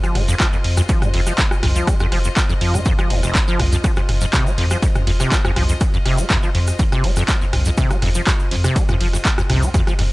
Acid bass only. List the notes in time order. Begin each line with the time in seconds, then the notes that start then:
0.04 F3
0.15 G#3
0.28 F2
0.40 F3
0.53 F2
0.77 F2
0.89 F3
1.02 G#3
1.14 F2
1.27 F3
1.38 F2
1.63 F2
1.76 F3
1.87 G#3
2.00 F2
2.12 F3
2.25 F2
2.49 F2
2.61 F3
2.74 G#3
2.86 F2
2.99 F3
3.10 D#2
3.23 F1
3.35 F2
3.48 F3
3.59 F2
3.72 F2
3.84 F3
3.97 F2
4.21 F2
4.33 C3
4.46 G#3
4.58 F2
4.71 F3
4.83 F2
5.07 F2
5.20 C3
5.32 G#3
5.45 F2
5.56 F3
5.69 F2
5.94 F2
6.06 C3
6.18 G#3
6.30 F2
6.43 F3
6.55 F2
6.79 F2
6.92 C3
7.04 G#3
7.17 F2
7.29 F3
7.41 F2
7.66 F2
7.78 C3
7.91 G#3
8.02 F2
8.15 F3
8.27 F2
8.51 F2
8.64 C3
8.76 G#3
8.89 F2
9.01 F3
9.13 F2
9.38 F2
9.50 C3
9.62 G#3
9.74 F2
9.87 F3
9.99 F2